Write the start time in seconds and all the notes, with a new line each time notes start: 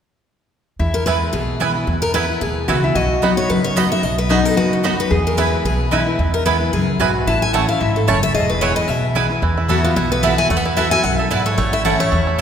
0.79 E2 E4
0.94 A#4
1.06 E3 G#3 B3 E4 B4 G#5
1.33 B1 B2 G#4
1.60 E3 G#3 B3 E4 B4 G#5
1.75 B3 E4
1.87 E2
2.02 A#4
2.14 E3 G#3 B3 E4 B4 G#5
2.29 B3 E4
2.41 D#2 B2 G#4
2.68 C#2 E3 G#3 B3 E4 F#4 B4 G#5
2.83 B3 E4
2.95 B1 B2 F#4 D#5
3.22 F#3 B3 D#4 F#4 D#5 B5
3.37 D#4 F#4 C#5
3.49 F#1 F#2 B4
3.64 C#5
3.76 F#3 B3 D#4 F#4 D#5 B5
3.91 D#4 F#4 E5
4.03 B1 B2 D#5
4.18 B4
4.29 F#3 B3 D#4 F#4 G#4 D#5 B5
4.45 A4
4.56 F#1 F#2 F#4 B4
4.73 D#4
4.83 F#3 B3 D#4 F#4 D#5 B5
5.00 B4
5.10 E2 G#4
5.27 A#4
5.37 E3 G#3 B3 E4 B4 G#5
5.64 B1 B2 G#4
5.91 E3 G#3 B3 E4 B4 G#5
6.07 B3 E4
6.19 E2
6.34 A#4
6.45 E3 G#3 B3 E4 B4 G#5
6.60 B3 E4
6.73 C#2 F#2 G#4
7.00 B1 G#2 B3 E4 F#4 B4 G#5
7.27 A1 A2 E4 A5
7.42 G#5
7.53 E3 A3 C#4 E4 C#5 F#5 A5
7.68 C#4 E4 F5
7.81 G#1 G#2 E4 E5
7.96 A4
8.07 F#1 F#2 A3 C#4 E4 C#5 A5
8.23 E5
8.34 E1 E2 G#4 D#5
8.50 B4
8.61 E3 G#3 B3 E4 B4 C#5 G#5
8.76 D#5
8.88 B1 B2 E5
9.15 E3 G#3 B3 E4 B4 G#5
9.30 B3 E4
9.42 E2 E3
9.58 E4
9.68 E3 B3 E4 F#4 A4 B4 F#5
9.84 B3 F4
9.96 B1 B2 E4 F#4
10.12 B3 B4
10.23 E3 B3 E4 F#4 A4 B4 E5 F#5
10.38 E4 G#5
10.50 E2 A3 F#5
10.57 B3
10.65 E4 B4
10.77 E3 B3 E4 F#4 A4 B4 E5 F#5
10.91 E4 F#4 G#5
11.03 B1 F#2 E4 F#5
11.18 A4 E5
11.31 G#2 B3 E4 B4 D5 F#5
11.46 A4 C#5
11.58 A1 A2 A3 C#5
11.73 E4 E5
11.85 E3 A3 C#4 E4 C#5 F#5 A5
12.00 A3 C#5
12.12 E2 E4
12.27 A3